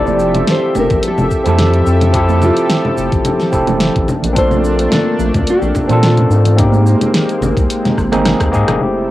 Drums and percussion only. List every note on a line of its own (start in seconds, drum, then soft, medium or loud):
0.07 high conga medium
0.07 cabasa soft
0.19 cabasa medium
0.34 closed hi-hat soft
0.34 low conga medium
0.34 cabasa soft
0.47 snare medium
0.47 closed hi-hat medium
0.47 cabasa soft
0.75 high conga medium
0.75 low conga medium
0.75 cabasa medium
0.90 kick loud
0.90 closed hi-hat soft
0.90 cabasa soft
1.03 closed hi-hat medium
1.03 cabasa soft
1.18 low conga medium
1.18 cabasa soft
1.31 kick medium
1.31 cabasa medium
1.45 closed hi-hat soft
1.45 high conga medium
1.45 low conga medium
1.45 cabasa soft
1.58 snare medium
1.58 closed hi-hat medium
1.58 low conga medium
1.58 cabasa soft
1.73 closed hi-hat soft
1.86 cabasa medium
2.01 closed hi-hat soft
2.01 low conga medium
2.01 cabasa soft
2.14 kick loud
2.14 closed hi-hat medium
2.14 cabasa soft
2.29 high conga medium
2.29 cabasa soft
2.42 low conga medium
2.42 cabasa medium
2.57 closed hi-hat soft
2.57 cabasa soft
2.70 snare medium
2.70 closed hi-hat medium
2.70 cabasa soft
2.85 low conga medium
2.98 high conga medium
2.98 cabasa medium
3.12 kick loud
3.12 closed hi-hat soft
3.12 cabasa soft
3.25 closed hi-hat medium
3.25 low conga medium
3.25 cabasa soft
3.40 snare soft
3.40 cabasa soft
3.53 kick medium
3.53 cabasa medium
3.67 closed hi-hat soft
3.67 high conga medium
3.67 low conga medium
3.67 cabasa soft
3.80 snare loud
3.80 closed hi-hat medium
3.80 cabasa soft
3.96 kick loud
3.96 closed hi-hat soft
4.08 low conga medium
4.08 cabasa medium
4.22 closed hi-hat soft
4.22 low conga medium
4.22 cabasa soft
4.36 kick loud
4.36 closed hi-hat medium
4.36 cabasa soft
4.51 high conga medium
4.51 low conga medium
4.51 cabasa soft
4.64 cabasa medium
4.79 closed hi-hat soft
4.79 cabasa soft
4.92 snare medium
4.92 closed hi-hat medium
4.92 low conga medium
4.92 cabasa soft
5.19 high conga medium
5.19 cabasa medium
5.34 kick loud
5.34 closed hi-hat soft
5.34 low conga medium
5.34 cabasa soft
5.47 closed hi-hat medium
5.47 cabasa soft
5.62 cabasa soft
5.75 kick medium
5.75 low conga medium
5.75 cabasa medium
5.89 closed hi-hat soft
5.89 high conga medium
5.89 low conga medium
5.89 cabasa soft
6.03 snare loud
6.03 closed hi-hat medium
6.03 cabasa soft
6.17 closed hi-hat soft
6.17 low conga medium
6.31 cabasa medium
6.45 closed hi-hat soft
6.45 low conga medium
6.45 cabasa soft
6.58 kick loud
6.58 closed hi-hat medium
6.58 low conga medium
6.58 cabasa soft
6.72 high conga medium
6.72 cabasa soft
6.86 cabasa medium
7.01 closed hi-hat soft
7.01 low conga medium
7.01 cabasa soft
7.14 snare loud
7.14 closed hi-hat medium
7.14 cabasa soft
7.29 closed hi-hat soft
7.29 cabasa soft
7.42 high conga medium
7.42 low conga medium
7.42 cabasa medium
7.57 kick loud
7.57 closed hi-hat soft
7.57 cabasa soft
7.70 closed hi-hat medium
7.70 cabasa soft
7.85 snare soft
7.85 closed hi-hat soft
7.85 low conga medium
7.85 cabasa soft
7.98 kick medium
7.98 cross-stick medium
7.98 cabasa medium
8.12 cross-stick medium
8.12 closed hi-hat soft
8.12 high conga medium
8.12 low conga medium
8.12 cabasa soft
8.26 cross-stick medium
8.26 snare loud
8.26 closed hi-hat medium
8.26 low conga medium
8.26 cabasa soft
8.40 kick medium
8.40 cross-stick medium
8.40 closed hi-hat soft
8.40 cabasa soft
8.53 kick medium
8.53 cabasa medium
8.68 cross-stick medium
8.68 closed hi-hat soft
8.68 low conga medium
8.68 cabasa soft
8.81 low conga medium
8.81 cabasa soft
8.96 cabasa soft